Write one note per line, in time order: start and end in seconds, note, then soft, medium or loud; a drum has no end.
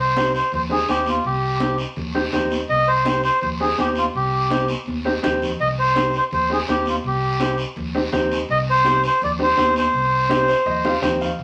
0.00 0.38 C2 medium
0.00 0.33 C5 loud
0.17 0.35 C4 medium
0.17 0.36 D#4 medium
0.17 0.36 G4 medium
0.17 high conga loud
0.17 short guiro medium
0.35 0.52 C5 medium
0.35 short guiro medium
0.52 0.81 D#2 medium
0.52 0.62 C5 medium
0.52 low conga medium
0.52 long guiro medium
0.69 0.76 C4 medium
0.69 0.77 D#4 medium
0.69 0.77 G4 medium
0.69 0.88 G#4 medium
0.69 high conga soft
0.88 1.18 D#2 medium
0.88 1.14 C4 medium
0.88 1.14 D#4 medium
0.88 1.14 G4 medium
0.88 1.06 G4 medium
0.88 high conga medium
0.88 short guiro medium
1.06 1.25 F4 medium
1.06 high conga medium
1.06 short guiro medium
1.24 1.83 C2 medium
1.24 1.76 G4 medium
1.24 high conga soft
1.24 long guiro medium
1.60 1.80 C4 medium
1.60 1.80 D#4 medium
1.60 1.80 G4 medium
1.60 high conga loud
1.60 short guiro medium
1.78 short guiro medium
1.96 2.26 D#2 medium
1.96 low conga medium
1.96 long guiro medium
2.15 2.21 C4 medium
2.15 2.21 D#4 medium
2.15 2.22 G4 medium
2.15 high conga soft
2.32 2.62 D#2 medium
2.32 2.58 C4 medium
2.32 2.59 D#4 medium
2.32 2.59 G4 medium
2.32 high conga medium
2.32 low conga medium
2.32 short guiro medium
2.51 high conga medium
2.51 short guiro medium
2.68 3.27 C2 loud
2.68 2.88 D#5 loud
2.68 high conga soft
2.68 long guiro medium
2.88 3.21 C5 loud
3.05 3.24 C4 medium
3.05 3.25 D#4 medium
3.05 3.25 G4 medium
3.05 high conga loud
3.05 short guiro medium
3.23 3.40 C5 loud
3.23 short guiro medium
3.41 3.71 D#2 medium
3.41 3.50 C5 medium
3.41 low conga medium
3.41 long guiro medium
3.60 3.66 C4 medium
3.60 3.67 D#4 medium
3.60 3.67 G4 medium
3.60 3.77 G#4 medium
3.60 high conga soft
3.78 4.07 D#2 medium
3.78 4.03 C4 medium
3.78 4.04 D#4 medium
3.78 4.04 G4 medium
3.78 3.88 G4 medium
3.78 high conga medium
3.78 short guiro medium
3.95 4.06 F4 medium
3.95 short guiro medium
4.14 4.73 C2 loud
4.14 4.66 G4 medium
4.14 high conga soft
4.14 long guiro medium
4.50 4.69 C4 medium
4.50 4.70 D#4 medium
4.50 4.70 G4 medium
4.50 high conga medium
4.50 short guiro medium
4.68 high conga medium
4.68 short guiro medium
4.86 5.16 D#2 medium
4.86 high conga medium
4.86 long guiro medium
5.05 5.11 C4 medium
5.05 5.11 D#4 medium
5.05 5.12 G4 medium
5.23 5.52 D#2 medium
5.23 5.48 C4 medium
5.23 5.48 D#4 medium
5.23 5.49 G4 loud
5.23 low conga medium
5.23 short guiro medium
5.42 low conga medium
5.42 short guiro medium
5.60 6.18 C2 loud
5.60 5.68 D#5 loud
5.60 high conga soft
5.60 long guiro medium
5.79 6.15 C5 loud
5.95 6.14 C4 medium
5.95 6.14 D#4 medium
5.95 6.15 G4 medium
5.95 high conga medium
5.95 short guiro medium
6.13 6.24 C5 loud
6.13 short guiro medium
6.31 6.61 D#2 medium
6.31 6.51 C5 loud
6.31 low conga medium
6.31 long guiro medium
6.50 6.56 C4 medium
6.50 6.56 D#4 medium
6.50 6.57 G4 medium
6.50 6.60 G#4 medium
6.50 high conga soft
6.67 6.97 D#2 medium
6.67 6.93 C4 medium
6.67 6.93 D#4 medium
6.67 6.94 G4 medium
6.67 6.86 G4 medium
6.67 high conga medium
6.67 short guiro medium
6.86 6.96 F4 medium
6.86 high conga medium
6.86 short guiro medium
7.04 7.62 C2 loud
7.04 7.56 G4 medium
7.04 high conga soft
7.04 long guiro medium
7.39 7.59 C4 medium
7.39 7.59 D#4 medium
7.39 7.60 G4 medium
7.39 high conga medium
7.39 short guiro medium
7.57 short guiro medium
7.76 8.05 D#2 medium
7.76 low conga medium
7.76 long guiro medium
7.95 8.01 C4 medium
7.95 8.01 D#4 medium
7.95 8.01 G4 medium
8.12 8.42 D#2 medium
8.12 8.38 C4 medium
8.12 8.38 D#4 medium
8.12 8.38 G4 loud
8.12 high conga medium
8.12 low conga medium
8.12 short guiro medium
8.31 short guiro medium
8.49 9.07 C2 loud
8.49 8.58 D#5 loud
8.49 high conga soft
8.49 long guiro medium
8.70 9.02 C5 loud
8.84 9.04 C4 medium
8.84 9.04 D#4 medium
8.84 9.04 G4 medium
8.84 high conga loud
8.84 short guiro medium
9.03 9.22 C5 loud
9.03 short guiro medium
9.22 9.50 D#2 loud
9.22 9.31 D5 medium
9.22 low conga medium
9.22 long guiro medium
9.39 9.45 C4 medium
9.39 9.46 D#4 medium
9.39 9.46 G4 medium
9.39 9.75 C5 loud
9.39 high conga soft
9.57 9.86 D#2 medium
9.57 9.82 C4 medium
9.57 9.83 D#4 medium
9.57 9.83 G4 medium
9.57 high conga medium
9.57 short guiro medium
9.76 10.99 C5 medium
9.76 high conga medium
9.76 short guiro medium
9.94 10.51 C2 loud
9.94 high conga soft
9.94 long guiro medium
10.29 10.48 C4 medium
10.29 10.49 D#4 medium
10.29 10.49 G4 loud
10.29 high conga loud
10.29 short guiro medium
10.48 10.65 C5 medium
10.48 short guiro medium
10.66 10.95 D#2 medium
10.66 10.83 D#5 medium
10.66 low conga medium
10.66 long guiro medium
10.85 10.91 C4 medium
10.85 10.91 D#4 medium
10.85 10.91 G4 medium
10.85 11.01 F5 medium
10.85 high conga medium
11.02 11.31 D#2 medium
11.02 11.27 C4 medium
11.02 11.28 D#4 medium
11.02 11.28 G4 medium
11.02 11.19 G5 medium
11.02 low conga medium
11.02 short guiro medium
11.21 11.38 F5 medium
11.21 low conga medium
11.21 short guiro medium
11.39 11.44 C2 medium
11.39 high conga soft
11.39 long guiro medium